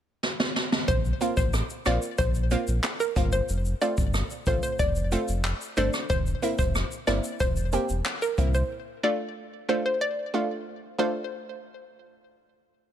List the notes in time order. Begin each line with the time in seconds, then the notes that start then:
0.23 snare
0.40 snare
0.56 snare
0.72 snare
0.88 A#1 C5, kick, shaker
1.05 shaker
1.21 A#3 C4 F4, closed hi-hat, shaker
1.37 A1 C5, kick, shaker
1.53 cross-stick, shaker
1.70 shaker
1.86 A#1 A#3 C4 F4 D5, cross-stick, closed hi-hat, shaker
2.02 shaker
2.18 A#1 C5, kick, shaker
2.34 shaker
2.51 A#3 C4 F4, closed hi-hat, shaker
2.67 A#1, shaker
2.83 cross-stick, clap, shaker
3.00 A#4, shaker
3.16 G1 A#3 C4 F4, kick, closed hi-hat, shaker
3.32 C5, shaker
3.49 F1, shaker
3.65 shaker
3.81 A3 C4 F4 D5, closed hi-hat, shaker
3.98 G1, kick, shaker
4.14 cross-stick, shaker
4.30 shaker
4.46 A1 A3 C4 F4 C5, kick, closed hi-hat, shaker
4.63 C5, shaker
4.79 F1 D5, kick, shaker
4.95 shaker
5.12 A3 C4 F4, closed hi-hat, shaker
5.28 F1, shaker
5.44 clap, shaker
5.61 shaker
5.77 G1 A3 C4 D4 C5, closed hi-hat, shaker
5.93 cross-stick, shaker
6.10 E1 C5, kick, shaker
6.26 shaker
6.42 A#3 C4 E4, closed hi-hat, shaker
6.59 F1 C5, kick, shaker
6.75 cross-stick, shaker
6.91 shaker
7.07 G1 A#3 C4 E4 D5, cross-stick, closed hi-hat, shaker
7.24 shaker
7.40 E1 C5, kick, shaker
7.56 shaker
7.72 A#3 C4 G4, closed hi-hat, shaker
7.89 E1, shaker
8.05 cross-stick, clap, shaker
8.22 A#4, shaker
8.38 C2 A#3 C4 E4, kick, closed hi-hat, shaker
8.54 C5, shaker
9.03 A3 D4 F4 D5
9.69 A3 D4 F4 C5
9.86 C5
10.01 D5
10.34 A3 D4 F4
10.99 A3 D4 F4 C5